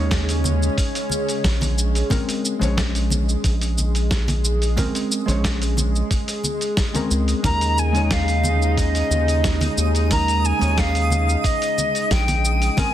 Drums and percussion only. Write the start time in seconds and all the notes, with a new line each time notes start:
0.11 kick, snare, open hi-hat, cabasa
0.29 open hi-hat, cabasa
0.44 high conga, cabasa
0.63 cabasa
0.78 kick, open hi-hat, cabasa
0.95 open hi-hat, cabasa
1.09 high conga, cabasa
1.29 open hi-hat, cabasa
1.44 kick, snare, open hi-hat, cabasa
1.61 open hi-hat, high conga, cabasa
1.78 cabasa
1.95 open hi-hat, cabasa
2.10 kick, open hi-hat, high conga, low conga, cabasa
2.29 open hi-hat, cabasa
2.45 cabasa
2.61 open hi-hat, high conga, cabasa
2.78 kick, snare, open hi-hat, cabasa
2.95 open hi-hat, cabasa
3.10 high conga, cabasa
3.29 cabasa
3.44 kick, open hi-hat, cabasa
3.61 open hi-hat, cabasa
3.78 high conga, cabasa
3.95 open hi-hat, cabasa
4.11 kick, snare, open hi-hat, cabasa
4.28 open hi-hat, high conga, cabasa
4.45 cabasa
4.62 open hi-hat, cabasa
4.77 kick, open hi-hat, high conga, low conga, cabasa
4.95 open hi-hat, cabasa
5.12 cabasa
5.28 open hi-hat, high conga, cabasa
5.44 kick, snare, open hi-hat, cabasa
5.62 open hi-hat, cabasa
5.77 high conga, cabasa
5.95 cabasa
6.11 kick, open hi-hat, cabasa
6.28 open hi-hat, cabasa
6.44 high conga, cabasa
6.61 open hi-hat, cabasa
6.77 kick, snare, open hi-hat, cabasa
6.95 open hi-hat, high conga, cabasa
7.11 cabasa
7.28 open hi-hat, cabasa
7.44 kick, open hi-hat, high conga, low conga, cabasa
7.61 open hi-hat, cabasa
7.78 cabasa
7.94 open hi-hat, high conga, cabasa
8.11 kick, snare, open hi-hat, cabasa
8.28 open hi-hat, cabasa
8.44 high conga, cabasa
8.62 cabasa
8.77 kick, open hi-hat, cabasa
8.95 open hi-hat, cabasa
9.11 high conga, cabasa
9.28 open hi-hat, cabasa
9.44 kick, snare, open hi-hat, cabasa
9.61 open hi-hat, high conga, cabasa
9.78 cabasa
9.95 open hi-hat, cabasa
10.11 kick, open hi-hat, high conga, low conga, cabasa
10.28 open hi-hat, cabasa
10.45 cabasa
10.61 open hi-hat, high conga, cabasa
10.78 kick, snare, open hi-hat, cabasa
10.95 open hi-hat, cabasa
11.10 high conga, cabasa
11.29 cabasa
11.44 kick, open hi-hat, cabasa
11.62 open hi-hat, cabasa
11.78 high conga, cabasa
11.95 open hi-hat, cabasa
12.11 kick, snare, open hi-hat, cabasa
12.28 open hi-hat, high conga, cabasa
12.45 cabasa
12.62 open hi-hat, cabasa
12.77 kick, open hi-hat, high conga, low conga, cabasa